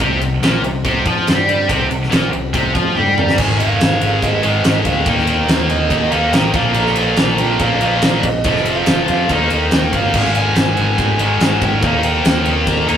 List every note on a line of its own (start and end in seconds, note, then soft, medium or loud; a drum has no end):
0.00 0.19 C2 loud
0.00 0.20 C3 loud
0.00 ride medium
0.19 0.40 C2 medium
0.19 0.38 C3 medium
0.19 ride medium
0.41 0.60 A#1 medium
0.41 0.63 A#2 loud
0.41 snare loud
0.41 ride medium
0.61 0.82 C2 medium
0.61 0.81 C3 medium
0.61 ride medium
0.84 1.04 C2 medium
0.84 1.05 C3 loud
0.84 kick loud
0.84 ride medium
1.05 1.25 F2 loud
1.05 1.27 F3 loud
1.05 kick loud
1.05 ride medium
1.27 1.67 G2 medium
1.27 1.69 G3 loud
1.27 snare loud
1.27 ride medium
1.49 ride medium
1.69 1.89 C2 medium
1.69 1.88 C3 loud
1.69 kick loud
1.69 ride loud
1.89 2.10 C2 medium
1.89 2.07 C3 medium
1.89 ride medium
2.03 snare soft
2.10 2.31 A#1 medium
2.10 2.31 A#2 loud
2.10 snare loud
2.10 ride medium
2.31 2.52 C2 medium
2.31 2.49 C3 medium
2.31 ride medium
2.53 2.74 C2 medium
2.53 2.74 C3 loud
2.53 kick loud
2.53 ride medium
2.74 2.95 F2 medium
2.74 2.95 F3 medium
2.74 kick loud
2.74 ride medium
2.95 3.35 G2 medium
2.95 3.37 G3 loud
2.95 3.16 G5 medium
2.95 high tom medium
3.18 3.40 A#5 loud
3.18 mid tom medium
3.29 snare medium
3.38 3.76 G#1 loud
3.38 4.43 G#2 medium
3.38 4.43 D#3 medium
3.38 4.42 G#3 loud
3.38 3.59 G#5 loud
3.38 kick loud
3.38 crash loud
3.50 snare soft
3.59 4.25 F5 loud
3.59 ride medium
3.80 3.99 G#1 medium
3.80 snare loud
3.80 ride loud
4.01 4.20 G#1 medium
4.01 ride medium
4.22 4.41 G#1 loud
4.22 4.88 D#5 loud
4.22 kick medium
4.22 ride loud
4.43 4.63 G#1 loud
4.43 4.63 G#2 medium
4.43 4.64 D#3 medium
4.43 4.63 G#3 loud
4.43 ride medium
4.64 4.83 G#1 medium
4.64 5.06 G#2 medium
4.64 5.05 D#3 medium
4.64 5.07 G#3 medium
4.64 snare loud
4.64 ride loud
4.85 5.04 D2 medium
4.85 5.06 F5 medium
4.85 kick medium
4.85 ride medium
5.06 5.44 D#2 loud
5.06 6.11 D#3 medium
5.06 6.11 A#3 medium
5.06 6.10 D#4 loud
5.06 5.47 G5 loud
5.06 kick loud
5.06 ride loud
5.18 snare soft
5.27 ride medium
5.48 5.68 D#2 loud
5.48 snare loud
5.48 ride loud
5.70 5.89 D#2 medium
5.70 5.90 D#5 medium
5.70 ride medium
5.90 6.09 D#2 loud
5.90 6.13 D#5 loud
5.90 kick medium
5.90 ride loud
6.11 6.31 D#2 loud
6.11 6.31 D#3 medium
6.11 6.33 A#3 medium
6.11 6.32 D#4 medium
6.11 6.33 F5 loud
6.11 ride medium
6.33 6.52 A1 medium
6.33 6.52 D#3 medium
6.33 6.54 A#3 medium
6.33 6.55 D#4 medium
6.33 6.55 G5 loud
6.33 snare loud
6.33 ride loud
6.53 6.73 A#1 loud
6.53 7.58 A#2 medium
6.53 7.59 F3 loud
6.53 7.60 A#3 loud
6.53 6.77 F5 medium
6.53 kick loud
6.53 ride medium
6.74 7.14 A#1 loud
6.74 6.97 A#5 loud
6.74 ride loud
6.86 snare soft
6.96 7.37 A#5 loud
6.96 ride medium
7.17 7.37 A#1 medium
7.17 snare loud
7.17 ride medium
7.38 7.59 A#1 loud
7.38 7.60 G5 medium
7.38 ride medium
7.59 7.79 A#1 loud
7.59 7.80 A#2 medium
7.59 7.81 F3 medium
7.59 7.80 A#3 loud
7.59 7.81 F5 loud
7.59 kick medium
7.59 ride loud
7.81 8.01 A#1 medium
7.81 8.24 A#2 medium
7.81 8.23 F3 medium
7.81 8.23 A#3 medium
7.81 8.04 F5 loud
7.81 ride medium
8.02 8.21 A#1 loud
8.02 8.25 D5 medium
8.02 snare loud
8.02 ride loud
8.23 8.42 A#1 loud
8.23 8.69 D#5 loud
8.23 kick medium
8.23 ride medium
8.44 8.82 F1 loud
8.44 9.29 F2 loud
8.44 9.29 C3 loud
8.44 9.30 F3 loud
8.44 kick loud
8.44 ride loud
8.56 snare soft
8.65 9.27 F5 medium
8.65 ride medium
8.86 9.07 F1 medium
8.86 snare loud
8.86 ride loud
9.08 9.28 F2 medium
9.08 ride medium
9.29 9.48 D#2 loud
9.29 10.13 D#3 medium
9.29 10.14 A#3 loud
9.29 11.85 D#4 loud
9.29 kick medium
9.29 ride loud
9.50 9.70 D#2 loud
9.50 ride medium
9.71 9.91 D#2 medium
9.71 9.95 G5 medium
9.71 snare loud
9.71 ride loud
9.92 10.14 G1 loud
9.92 10.37 F5 loud
9.92 kick medium
9.92 ride medium
10.14 10.51 G#1 loud
10.14 11.19 G#2 medium
10.14 11.20 D#3 medium
10.14 11.20 G#3 loud
10.14 kick loud
10.14 crash loud
10.25 snare soft
10.35 10.78 G#5 medium
10.35 ride medium
10.56 10.75 G#1 loud
10.56 snare loud
10.56 ride medium
10.77 10.96 G#1 loud
10.77 11.64 G#5 loud
10.77 ride medium
10.98 11.17 G#1 loud
10.98 kick medium
10.98 ride loud
11.19 11.38 G#1 medium
11.19 11.41 D#3 medium
11.19 11.41 G#3 medium
11.19 ride medium
11.23 11.40 G#2 medium
11.40 11.59 G#1 loud
11.40 11.82 G#2 medium
11.40 11.81 D#3 medium
11.40 11.83 G#3 medium
11.40 snare loud
11.40 ride loud
11.61 11.80 G#1 loud
11.61 11.83 G5 medium
11.61 kick loud
11.61 ride medium
11.82 12.20 D#2 loud
11.82 12.87 D#3 medium
11.82 12.88 A#3 loud
11.82 12.86 D#4 loud
11.82 12.05 F5 loud
11.82 kick loud
11.82 ride loud
12.03 12.25 G5 loud
12.03 ride medium
12.24 12.44 D#2 loud
12.24 12.70 G5 loud
12.24 snare loud
12.24 ride loud
12.45 12.65 D#2 loud
12.45 ride medium
12.67 12.86 D#2 loud
12.67 12.89 A#5 loud
12.67 kick medium
12.67 ride loud
12.87 12.97 D#2 loud
12.87 12.97 D#3 medium
12.87 12.97 A#3 medium
12.87 12.97 D#4 medium
12.87 12.97 A#5 loud
12.87 ride medium